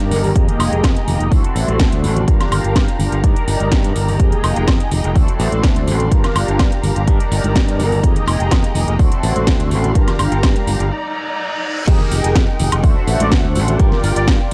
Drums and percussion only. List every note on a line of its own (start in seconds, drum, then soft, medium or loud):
0.00 closed hi-hat soft
0.11 open hi-hat loud
0.11 tambourine medium
0.23 open hi-hat medium
0.23 tambourine soft
0.23 low conga medium
0.35 kick loud
0.35 closed hi-hat medium
0.35 tambourine soft
0.48 closed hi-hat soft
0.48 low conga loud
0.59 open hi-hat loud
0.59 tambourine medium
0.59 high woodblock medium
0.73 closed hi-hat soft
0.73 tambourine soft
0.84 kick loud
0.84 snare loud
0.84 closed hi-hat medium
0.84 high woodblock medium
0.96 closed hi-hat soft
0.96 tambourine soft
1.07 open hi-hat loud
1.07 tambourine medium
1.07 low conga medium
1.20 closed hi-hat soft
1.20 tambourine soft
1.32 kick loud
1.32 open hi-hat medium
1.44 closed hi-hat medium
1.44 tambourine soft
1.56 open hi-hat loud
1.56 tambourine medium
1.68 closed hi-hat soft
1.68 tambourine soft
1.68 high conga medium
1.79 kick loud
1.79 snare loud
1.79 closed hi-hat medium
1.92 closed hi-hat soft
1.92 tambourine soft
1.92 high conga medium
2.04 open hi-hat loud
2.04 tambourine medium
2.16 closed hi-hat soft
2.16 tambourine soft
2.16 low conga medium
2.28 kick loud
2.28 closed hi-hat medium
2.28 tambourine medium
2.40 snare soft
2.40 closed hi-hat soft
2.40 low conga medium
2.40 high woodblock medium
2.52 open hi-hat loud
2.52 tambourine medium
2.52 high woodblock medium
2.64 closed hi-hat soft
2.64 tambourine soft
2.76 kick loud
2.76 snare loud
2.76 closed hi-hat medium
2.76 high woodblock medium
2.88 closed hi-hat soft
2.88 tambourine soft
3.00 open hi-hat loud
3.00 tambourine medium
3.00 low conga medium
3.12 closed hi-hat soft
3.24 kick loud
3.24 closed hi-hat medium
3.24 tambourine soft
3.24 high conga medium
3.36 closed hi-hat soft
3.36 tambourine soft
3.48 open hi-hat loud
3.48 tambourine medium
3.60 closed hi-hat soft
3.60 tambourine soft
3.60 high conga medium
3.72 kick loud
3.72 snare loud
3.72 closed hi-hat medium
3.84 closed hi-hat soft
3.84 tambourine soft
3.96 open hi-hat loud
3.96 tambourine medium
4.07 open hi-hat medium
4.07 tambourine soft
4.07 low conga medium
4.20 kick loud
4.20 closed hi-hat medium
4.20 tambourine soft
4.32 closed hi-hat soft
4.32 low conga medium
4.44 open hi-hat loud
4.44 tambourine medium
4.44 high woodblock medium
4.56 closed hi-hat soft
4.56 tambourine soft
4.68 kick loud
4.68 snare loud
4.68 closed hi-hat medium
4.68 high woodblock medium
4.80 closed hi-hat soft
4.80 tambourine soft
4.91 open hi-hat loud
4.91 tambourine medium
4.91 low conga medium
5.04 closed hi-hat soft
5.04 tambourine soft
5.15 kick loud
5.15 open hi-hat medium
5.15 tambourine medium
5.28 closed hi-hat soft
5.28 tambourine soft
5.39 open hi-hat loud
5.39 tambourine medium
5.52 closed hi-hat soft
5.52 tambourine soft
5.52 high conga medium
5.63 kick loud
5.63 snare loud
5.63 closed hi-hat medium
5.76 closed hi-hat medium
5.76 tambourine soft
5.76 high conga medium
5.87 open hi-hat loud
5.87 tambourine medium
6.00 closed hi-hat soft
6.00 tambourine soft
6.00 low conga medium
6.12 kick loud
6.12 closed hi-hat medium
6.24 snare soft
6.24 closed hi-hat medium
6.24 low conga medium
6.24 high woodblock medium
6.35 open hi-hat loud
6.35 tambourine medium
6.35 high woodblock medium
6.48 closed hi-hat soft
6.48 tambourine soft
6.59 kick loud
6.59 snare loud
6.59 closed hi-hat medium
6.59 high woodblock medium
6.71 closed hi-hat soft
6.71 tambourine soft
6.83 open hi-hat loud
6.83 tambourine medium
6.83 low conga medium
6.96 closed hi-hat soft
6.96 tambourine soft
7.07 kick loud
7.07 closed hi-hat medium
7.07 tambourine soft
7.07 high conga medium
7.20 closed hi-hat medium
7.20 tambourine soft
7.31 open hi-hat loud
7.31 tambourine medium
7.44 closed hi-hat soft
7.44 tambourine soft
7.44 high conga medium
7.56 kick loud
7.56 snare loud
7.56 closed hi-hat medium
7.67 closed hi-hat soft
7.67 tambourine soft
7.79 open hi-hat medium
7.79 tambourine medium
7.91 open hi-hat medium
7.91 tambourine soft
7.91 low conga medium
8.02 kick loud
8.02 closed hi-hat medium
8.02 tambourine soft
8.16 closed hi-hat soft
8.16 low conga loud
8.26 open hi-hat loud
8.26 tambourine medium
8.26 high woodblock medium
8.40 closed hi-hat soft
8.40 tambourine soft
8.51 kick loud
8.51 snare loud
8.51 closed hi-hat medium
8.51 high woodblock medium
8.63 closed hi-hat medium
8.63 tambourine soft
8.75 open hi-hat loud
8.75 tambourine medium
8.75 low conga medium
8.88 closed hi-hat soft
8.99 kick loud
8.99 open hi-hat medium
8.99 tambourine soft
9.12 closed hi-hat medium
9.12 tambourine soft
9.23 open hi-hat loud
9.23 tambourine medium
9.36 closed hi-hat soft
9.36 tambourine soft
9.36 high conga medium
9.47 kick loud
9.47 snare loud
9.47 closed hi-hat medium
9.59 closed hi-hat medium
9.59 tambourine soft
9.59 high conga medium
9.71 open hi-hat medium
9.71 tambourine medium
9.84 closed hi-hat soft
9.84 tambourine soft
9.84 low conga medium
9.95 kick loud
9.95 closed hi-hat medium
9.95 tambourine medium
10.08 snare soft
10.08 closed hi-hat medium
10.08 tambourine soft
10.08 low conga medium
10.08 high woodblock medium
10.19 open hi-hat loud
10.19 tambourine medium
10.19 high woodblock medium
10.32 closed hi-hat soft
10.32 tambourine soft
10.43 kick loud
10.43 snare loud
10.43 closed hi-hat medium
10.43 tambourine medium
10.43 high woodblock medium
10.55 closed hi-hat medium
10.55 tambourine soft
10.55 high conga medium
10.67 open hi-hat loud
10.67 tambourine medium
10.67 low conga medium
10.80 closed hi-hat soft
10.80 tambourine soft
11.88 kick loud
11.88 closed hi-hat medium
11.88 crash loud
11.88 tambourine medium
12.00 low conga medium
12.11 open hi-hat loud
12.11 tambourine loud
12.24 closed hi-hat medium
12.24 tambourine soft
12.35 kick loud
12.35 snare loud
12.35 closed hi-hat medium
12.35 tambourine medium
12.48 tambourine soft
12.59 open hi-hat loud
12.59 tambourine loud
12.59 low conga medium
12.72 closed hi-hat medium
12.72 tambourine soft
12.72 high woodblock medium
12.83 kick loud
12.83 open hi-hat medium
12.83 tambourine medium
12.96 tambourine soft
13.07 open hi-hat loud
13.07 tambourine medium
13.20 closed hi-hat medium
13.20 tambourine soft
13.20 high conga loud
13.32 kick loud
13.32 snare loud
13.32 closed hi-hat medium
13.44 tambourine soft
13.44 high conga medium
13.55 open hi-hat loud
13.55 tambourine medium
13.68 closed hi-hat medium
13.68 tambourine soft
13.68 low conga medium
13.79 kick loud
13.79 closed hi-hat medium
13.79 tambourine soft
13.91 snare soft
13.91 low conga loud
14.03 open hi-hat loud
14.03 tambourine loud
14.16 closed hi-hat medium
14.16 tambourine soft
14.28 kick loud
14.28 snare loud
14.28 closed hi-hat medium
14.40 tambourine soft